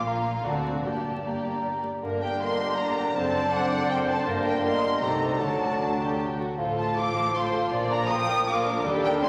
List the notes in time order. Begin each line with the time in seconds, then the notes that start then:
Already playing: A#1 A#2 A#3 F4
0.06 A#3 F4 F5 A#5
0.25 A#4
0.44 D2 D3 C4 F#4 D5 A5
0.65 F#4 D5
0.84 G1 G2 A#3 G4 D5 A5
1.24 A#3 G4 D5 A#5
1.44 A#4
1.64 D5
1.83 G4
2.02 G1 G2 D3 A#3 D4 A#4
2.21 A#3 D4 G4 A#4 G5
2.40 A#3 G4 A#4 D5 D#5 C6
2.59 D4 G4 A#4
2.78 A#3 D4 A#4 D5 A#5
2.96 D4 G4
3.15 F#1 F#2 C4 D4 A4 C5 A5
3.35 C4 D4 D5
3.52 C4 D4 A4 C5 D5 F#5
3.71 D4 C5 D5
3.89 C4 A#4 C5 D5 G5
4.07 D4 C5 D5 A5
4.25 G1 G2 D3 A#3 D4 A#4
4.45 A#3 D4 G4 A#4 G5
4.64 A#3 A#4 D5 D#5 C6
4.84 D4 G4
5.01 C2 C3 D#3 A3 C4 D#4 G4 A4 D5 A#5
5.22 D#4 C5
5.38 D2 D3 F#3 A3 D4 F#4 A4 D5 A5
5.61 D4 F#4 D5
5.80 D4
6.00 G4 D5
6.19 A4
6.38 F#4
6.57 A1 A2 F3 F4 A4
6.77 C4 F4 A4 C5 A5
6.96 F4 A4 F5 D6
7.16 F4 A4 C5
7.34 F4 A4 C5 F5 C6
7.53 C4 F4 A4
7.71 A#1 A#2 F3 A#3 F4 D5
7.90 A#3 D4 A#4 D5 A#5
8.09 A#3 F4 A#4 G5 D#6
8.28 D4 A#4
8.47 A#3 F4 F5 D6
8.65 D4 A#4
8.84 D#2 D#3 G3 D4 G4 A4
9.02 D4 G4 A#4 G5
9.21 E1 E2 E3 G3 C#4 G4 E5 C6